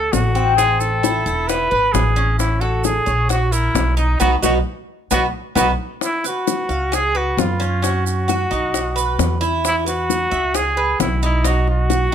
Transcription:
Already playing: A4
0.12 A1 F#4, high bongo, low bongo, maracas
0.35 C4, high bongo, maracas
0.56 C4 G#4, high bongo, maracas
0.80 A4, high bongo, maracas
1.03 E4, high bongo, maracas
1.26 E1 E4, high bongo, maracas
1.48 B4, high bongo, maracas
1.71 G#1 B4
1.92 A1 G#4, high bongo, low bongo, maracas
2.16 C#4, high bongo, maracas
2.38 E4, high bongo, maracas
2.60 F#4 A4, high bongo
2.84 G#4, high bongo, maracas
3.06 A#1 C#5, high bongo, maracas
3.29 F#4, high bongo, maracas
3.52 E4 A#4, maracas
3.75 B1, high bongo, low bongo, maracas
3.97 D#4, high bongo, maracas
4.20 B1 B3 D#4 F#4, high bongo, maracas
4.42 B1 B3 D#4 F#4, high bongo, maracas
5.11 B1 B3 D#4 F#4, high bongo, maracas
5.55 B1 B3 D#4 F#4, high bongo, maracas
6.01 E4, high bongo, maracas
6.24 F#4 B4, high bongo, maracas
6.48 high bongo, maracas
6.69 C#2 F5, high bongo, maracas
6.92 G#4, high bongo, maracas
7.15 F#4 B4
7.37 F#2 F4, high bongo, low bongo, maracas
7.60 C#4, high bongo, maracas
7.82 C#4 F#4, high bongo, maracas
8.06 F#4, high bongo, maracas
8.28 F#4, high bongo, maracas
8.51 B1 D#4, high bongo, maracas
8.74 high bongo, maracas
8.96 B4, maracas
9.19 E2, high bongo, low bongo, maracas
9.41 E4, high bongo, maracas
9.65 E4, high bongo, maracas
9.86 F#4 B4, high bongo, maracas
10.10 high bongo, maracas
10.31 C#2 E5, high bongo, maracas
10.54 G#4, high bongo, maracas
10.77 B4
11.00 B1 E4, high bongo, low bongo, maracas
11.23 D#4 E4, high bongo, maracas
11.44 D#4 F#4, high bongo, maracas
11.68 F#4, high bongo
11.90 F#4, high bongo, maracas

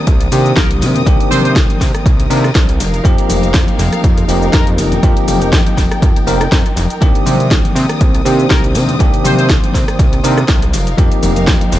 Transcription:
Already playing: D#3 A#3 C4 D4 G4 A#4 D#6
0.07 C2, kick, closed hi-hat, tambourine, cabasa
0.20 closed hi-hat, tambourine, cabasa
0.31 C3 D#3 A#3 C4 D4 G4, open hi-hat, tambourine, cabasa
0.45 tambourine, cabasa
0.56 C2 A#4, kick, snare, closed hi-hat, tambourine, high conga, cabasa
0.71 closed hi-hat, cabasa
0.81 C3, open hi-hat, tambourine, high conga, cabasa
0.95 closed hi-hat, tambourine, low conga, cabasa
1.06 C2 D#3 A#3 C4 D4 G4, kick, closed hi-hat, tambourine, cabasa
1.20 C3, closed hi-hat, cabasa
1.31 C3 C5, open hi-hat, tambourine, high conga, cabasa
1.44 C5, closed hi-hat, tambourine, cabasa
1.56 C2, kick, snare, closed hi-hat, tambourine, cabasa
1.68 closed hi-hat, high conga, cabasa
1.81 C3, kick, snare, open hi-hat, tambourine, cabasa
1.95 cross-stick, closed hi-hat, tambourine, cabasa
2.06 C2, kick, closed hi-hat, tambourine, cabasa
2.19 closed hi-hat, tambourine, cabasa
2.30 C3 D#3 A#3 C4 D4 A#4, open hi-hat, tambourine, cabasa
2.44 cross-stick, tambourine, cabasa
2.55 C2, kick, snare, closed hi-hat, tambourine, high conga, cabasa
2.69 closed hi-hat, cabasa
2.80 F1 D#4 F5, open hi-hat, tambourine, high conga, cabasa
2.93 closed hi-hat, tambourine, cabasa
3.04 F2 F3 A#3 C4 D#4 G4, kick, closed hi-hat, tambourine, cabasa
3.18 closed hi-hat, cabasa
3.29 F1, open hi-hat, tambourine, high conga, cabasa
3.43 closed hi-hat, tambourine, cabasa
3.54 F2, kick, snare, closed hi-hat, tambourine, cabasa
3.67 closed hi-hat, high conga, cabasa
3.79 F1, open hi-hat, tambourine, cabasa
3.93 cross-stick, closed hi-hat, tambourine, cabasa
4.04 F2, kick, closed hi-hat, tambourine, cabasa
4.17 closed hi-hat, tambourine, cabasa
4.28 F1 F3 A#3 C4 D#4 G4, open hi-hat, tambourine, cabasa
4.42 tambourine, cabasa
4.53 F2 A#4, kick, snare, closed hi-hat, tambourine, high conga, cabasa
4.67 closed hi-hat, cabasa
4.78 F1 G5, open hi-hat, tambourine, high conga, cabasa
4.92 closed hi-hat, tambourine, low conga, cabasa
5.02 F2 F3 A#3 C4 D#4 G4, kick, closed hi-hat, tambourine, cabasa
5.16 F1, closed hi-hat, tambourine, cabasa
5.27 F1, open hi-hat, tambourine, high conga, cabasa
5.41 closed hi-hat, tambourine, cabasa
5.52 F2, kick, snare, closed hi-hat, tambourine, cabasa
5.66 closed hi-hat, high conga, cabasa
5.77 F1, kick, snare, open hi-hat, tambourine, cabasa
5.91 cross-stick, closed hi-hat, tambourine, cabasa
6.02 F2, kick, closed hi-hat, tambourine, cabasa
6.15 F1, closed hi-hat, tambourine, cabasa
6.27 F1 F3 A#3 C4 D#4 A#4, open hi-hat, tambourine, cabasa
6.41 cross-stick, closed hi-hat, tambourine, cabasa
6.52 F2, kick, snare, closed hi-hat, tambourine, high conga, cabasa
6.66 closed hi-hat, cabasa
6.76 F1, open hi-hat, tambourine, high conga, cabasa
6.90 closed hi-hat, tambourine, cabasa
7.01 C2 D#3 A#3 C4 D4 G4 D#6, kick, closed hi-hat, tambourine, cabasa
7.15 closed hi-hat, cabasa
7.26 C3, open hi-hat, tambourine, high conga, cabasa
7.40 closed hi-hat, tambourine, cabasa
7.51 C2, kick, snare, closed hi-hat, cabasa
7.64 closed hi-hat, high conga, cabasa
7.75 C3, open hi-hat, tambourine, cabasa
7.89 cross-stick, closed hi-hat, tambourine, cabasa
8.01 C2, kick, closed hi-hat, cabasa
8.15 closed hi-hat, tambourine, cabasa
8.25 C3 D#3 A#3 C4 D4 G4, open hi-hat, tambourine, cabasa
8.38 tambourine, cabasa
8.50 C2 A#4, kick, snare, closed hi-hat, tambourine, high conga, cabasa
8.64 closed hi-hat, cabasa
8.74 C3, open hi-hat, tambourine, high conga, cabasa
8.88 closed hi-hat, tambourine, low conga, cabasa
8.99 C2 D#3 A#3 C4 D4 G4 C5, kick, closed hi-hat, tambourine, cabasa
9.13 C3, closed hi-hat, cabasa
9.24 C3 C5, open hi-hat, tambourine, high conga, cabasa
9.38 C5, closed hi-hat, tambourine, cabasa
9.49 C2, kick, snare, closed hi-hat, cabasa
9.63 closed hi-hat, high conga, cabasa
9.74 C3, kick, snare, open hi-hat, tambourine, cabasa
9.88 cross-stick, closed hi-hat, tambourine, cabasa
9.99 C2, kick, closed hi-hat, tambourine, cabasa
10.13 closed hi-hat, tambourine, cabasa
10.23 C3 D#3 A#3 C4 D4 A#4, open hi-hat, tambourine, cabasa
10.37 cross-stick, tambourine, cabasa
10.48 C2, kick, snare, closed hi-hat, tambourine, high conga, cabasa
10.62 closed hi-hat, cabasa
10.73 F1 D#4 A#4 F5, open hi-hat, tambourine, high conga, cabasa
10.87 closed hi-hat, tambourine, cabasa
10.97 F2 F3 A#3 C4 D#4 G4, kick, closed hi-hat, tambourine, cabasa
11.12 closed hi-hat, cabasa
11.23 F1, open hi-hat, tambourine, high conga, cabasa
11.36 closed hi-hat, tambourine, cabasa
11.47 F2, kick, snare, closed hi-hat, tambourine, cabasa
11.61 closed hi-hat, high conga, cabasa
11.72 F1, open hi-hat, tambourine, cabasa

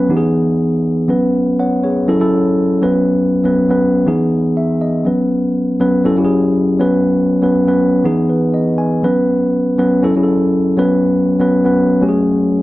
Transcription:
Already playing: F#3 B3 C#4 B4
0.09 E3 B3 D#4 G4
0.17 G#4
1.08 F#3 B3 C#4 B4
1.59 C#5 F#5
1.83 G#4 C#5
2.08 F#3 C#4 E4 A4
2.20 F#3 C#4 E4 A4
2.82 F#3 B3 C#4 B4
3.44 F#3 B3 C#4 B4
3.70 F#3 B3 C#4 B4
4.06 E3 B3 D#4 G#4
4.57 E5
4.81 D#5
5.05 F#3 B3 C#4 B4
5.80 F#3 B3 C#4 B4
6.04 F#3 C#4 E4 A4
6.17 F#3 C#4 E4 G4
6.25 G#4
6.79 F#3 B3 C#4 B4
7.42 F#3 B3 C#4 B4
7.67 F#3 B3 C#4 B4
8.04 E3 B3 D#4 G#4
8.30 B4
8.54 D#5
8.78 G#5
9.03 F#3 B3 C#4 B4
9.78 F#3 B3 C#4 B4
10.03 F#3 C#4 E4 A4
10.16 F#3 C#4 E4 G#4
10.23 A4
10.77 F#3 B3 C#4 B4
11.40 F#3 B3 C#4 B4
11.64 F#3 B3 C#4 B4
12.01 F#3 A3 C#4 G4
12.08 G#4

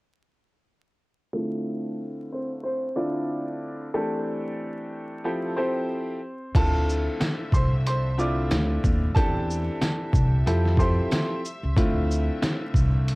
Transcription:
1.33 D3 A3 C4 E4 F4 A4
2.32 C4 C5
2.63 C4 C5
2.96 D3 A3 C4 D4 E4 F4 D5
3.94 E3 A3 C4 D4 G4 A4
5.24 F3 C4 E4 G4 A4
5.57 F3 C4 E4 G4 A4 C5
6.54 D2 D3 F3 A3 C4 E4 F4 A4 E5 A5, kick, closed hi-hat, crash
6.89 shaker
7.21 snare, closed hi-hat, tambourine
7.52 C2 C5 C6, kick, shaker
7.86 C5 C6, closed hi-hat
8.17 D3 A3 C4 E4 F4 D5 D6, shaker
8.51 D2, snare, closed hi-hat, tambourine
8.84 D#2, kick, shaker
9.15 E2 C3 E3 G3 C4 D4 G4 A4 E5 A5, kick, closed hi-hat
9.50 shaker
9.81 snare, closed hi-hat, tambourine
10.13 C2, kick, shaker
10.46 F2 F3 A3 C4 E4 G4 A4, closed hi-hat
10.66 snare
10.77 F3 C4 E4 G4 A4 C5 C6, kick, shaker
11.11 snare, closed hi-hat, tambourine
11.45 shaker
11.63 C#2
11.77 D2 D3 F3 A3 C4 E4 F4, kick, closed hi-hat
12.11 shaker
12.42 snare, closed hi-hat, tambourine
12.74 C2, kick, shaker
13.08 closed hi-hat

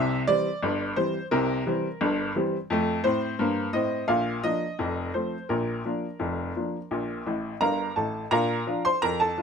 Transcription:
Already playing: C2 C3 E5
0.27 E3 G3 C4 D5
0.63 G1 G2
0.96 E3 G3 C4 C5
1.31 C2 C3 A#4
1.67 E3 G3 C4
2.01 G1 G2
2.36 E3 G3 C4
2.70 F2 A3
3.04 A2 C4 C5
3.39 G2 A#3
3.73 A2 C4 D#5
4.08 A#1 A#2 F5
4.43 F3 A#3 D4 D#5
4.79 F1 F2
5.14 F3 A3 C4 C5
5.49 A#1 A#2 A#4
5.85 F3 A#3 D4
6.19 F1 F2
6.56 F3 A#3 D4
6.91 A#1 A#2
7.27 A1 A2
7.61 G1 G2 A#4 F5 A#5
7.96 A1 A2 A4 A5
8.31 A#2 D4 A#4 F5 A#5
8.67 F3 D4 F4
8.85 C5 C6
9.02 F2 A#4 A#5
9.20 A4 A5
9.38 F3 D4 F4

